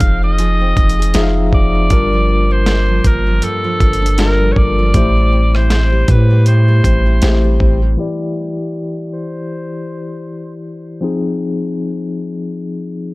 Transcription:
Already playing: nylon-string guitar F3 C4 G#4, tine electric piano F3 D#4 G#4 F5, celesta D#4, alto saxophone F5
0.00 808-style bass F1, nylon-string guitar D#4, kick, closed hi-hat
0.23 nylon-string guitar C4, alto saxophone D#5
0.38 nylon-string guitar F3 G#4, closed hi-hat
0.61 nylon-string guitar C4
0.77 808-style bass F1, nylon-string guitar D#4, kick, closed hi-hat
0.89 closed hi-hat
0.99 nylon-string guitar G#4, closed hi-hat
1.14 808-style bass F1, tine electric piano F3 D#4 G#4 E5, nylon-string guitar D#4, snare, closed hi-hat
1.23 tine electric piano F5
1.37 nylon-string guitar C4
1.53 808-style bass F1, nylon-string guitar D#4, alto saxophone D5, kick
1.75 nylon-string guitar C4
1.90 808-style bass G1, nylon-string guitar G2 D4, tine electric piano G3 D4 F4 A#4, kick, closed hi-hat
2.13 nylon-string guitar F3
2.29 nylon-string guitar A#3
2.51 nylon-string guitar D4, alto saxophone C5
2.66 nylon-string guitar A#3, snare, closed hi-hat
2.88 nylon-string guitar F3
3.04 808-style bass G1, nylon-string guitar A#3, alto saxophone A#4, kick, closed hi-hat
3.27 nylon-string guitar F3
3.42 nylon-string guitar G2 D4, alto saxophone A4, closed hi-hat
3.64 nylon-string guitar F3
3.80 808-style bass G1, nylon-string guitar A#3, celesta F4, kick, closed hi-hat
3.93 closed hi-hat
4.02 nylon-string guitar D4, closed hi-hat
4.18 tine electric piano G3 D4 F4 A4, nylon-string guitar A#3, alto saxophone A#4, snare, closed hi-hat
4.27 tine electric piano A#4
4.40 nylon-string guitar F3
4.52 alto saxophone C#5
4.56 808-style bass G1, nylon-string guitar A#3, alto saxophone D5, kick
4.79 nylon-string guitar F3
4.94 808-style bass A1, nylon-string guitar A2 E4, tine electric piano A3 E4 G4 C5, kick, closed hi-hat
5.16 nylon-string guitar G3
5.32 nylon-string guitar C4
5.54 nylon-string guitar E4, alto saxophone C5, cross-stick
5.70 nylon-string guitar C4, snare, closed hi-hat
5.92 nylon-string guitar G3
6.08 808-style bass A2, nylon-string guitar C4, alto saxophone B4, kick, closed hi-hat
6.30 nylon-string guitar G3
6.46 nylon-string guitar A2 E4, alto saxophone C5, closed hi-hat
6.68 nylon-string guitar G3
6.84 808-style bass A1, nylon-string guitar C4, kick, closed hi-hat
7.06 nylon-string guitar E4
7.22 808-style bass A1, tine electric piano A3 E4 G4 C5, nylon-string guitar C4, snare, closed hi-hat
7.44 nylon-string guitar G3
7.60 808-style bass A1, nylon-string guitar C4, kick
7.82 nylon-string guitar G3
7.97 tine electric piano E3 E4 G4 D5
9.14 alto saxophone C5
11.01 tine electric piano F3 C4 D#4 G#4

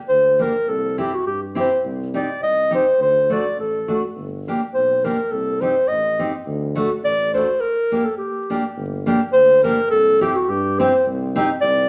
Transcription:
0.09 tuba D2, clarinet C5
0.39 steel-string acoustic guitar A#3 D4 G4, clarinet A#4
0.67 tuba C2, clarinet A4
0.98 steel-string acoustic guitar C4 E4 G4, clarinet G4
1.14 clarinet F#4
1.26 tuba G2, clarinet G4
1.55 steel-string acoustic guitar C4 E4 G4
1.60 clarinet C5
1.84 tuba C2
2.14 steel-string acoustic guitar C4 D#4 G4, clarinet D5
2.41 tuba C2, clarinet D#5
2.71 steel-string acoustic guitar C4 D#4 G4, clarinet C5
2.99 tuba D2, clarinet C5
3.29 steel-string acoustic guitar A3 D4 F#4, clarinet D5
3.57 tuba A1, clarinet A4
3.88 steel-string acoustic guitar A3 D4 F#4
4.16 tuba G1
4.48 steel-string acoustic guitar A#3 D4 G4
4.74 tuba B1, clarinet C5
5.04 steel-string acoustic guitar A#3 D4 G4, clarinet A#4
5.31 tuba C2, clarinet A4
5.61 steel-string acoustic guitar C4 D#4 G4, clarinet C5
5.88 tuba A1, clarinet D#5
6.19 steel-string acoustic guitar C4 D#4 G4
6.46 tuba D2
6.75 steel-string acoustic guitar A3 D4 F#4
7.03 tuba A1, clarinet D5
7.34 steel-string acoustic guitar A3 D4 F#4, clarinet C5
7.60 clarinet A#4
7.92 steel-string acoustic guitar A#3 D4 G4
8.04 clarinet A4
8.17 clarinet G4
8.50 steel-string acoustic guitar A#3 D4 G4
8.76 tuba G1
9.06 steel-string acoustic guitar A#3 D4 G4
9.33 tuba D2, clarinet C5
9.63 steel-string acoustic guitar A#3 D4 G4, clarinet A#4
9.90 tuba C2, clarinet A4
10.21 steel-string acoustic guitar C4 E4 G4, clarinet G4
10.36 clarinet F#4
10.49 tuba G2, clarinet G4
10.79 steel-string acoustic guitar C4 E4 G4, clarinet C5
11.06 tuba C2
11.35 steel-string acoustic guitar C4 D#4 G4
11.61 tuba C2, clarinet D5

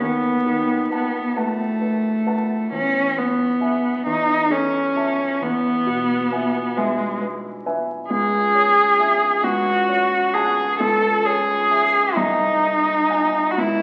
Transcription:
0.00 grand piano D#2, cello B3
0.46 grand piano D#3
0.90 cello B3, grand piano B4 F#5 A5
1.36 cello A3, grand piano B4 F#5 A5
1.81 grand piano B4
2.26 grand piano B4 F#5 A5
2.72 grand piano E2, cello C#4
3.17 cello B3, grand piano B4
3.60 grand piano E5 G#5
4.06 grand piano E2, cello D#4
4.50 cello C#4, grand piano A4
4.96 grand piano E5 A5
5.41 grand piano E2, cello B3
5.86 grand piano B2
6.31 grand piano B4 E5 G#5
6.77 cello G#3, grand piano B4 E5 G#5
7.21 grand piano B4
7.66 grand piano B4 E5 G#5
8.10 grand piano C#2, cello G#4
8.55 grand piano C#5
8.99 grand piano E5 G#5
9.43 grand piano C#2, cello F#4
9.89 grand piano C#5
10.33 cello G#4, grand piano F#5 A5
10.80 grand piano C#2, cello A4
11.24 cello G#4, grand piano C#5
11.71 grand piano E5 G#5
12.16 grand piano C2, cello D#4
12.63 grand piano D#5
13.09 grand piano F#5 G#5
13.51 cello F#4
13.58 grand piano C#2, cello E4

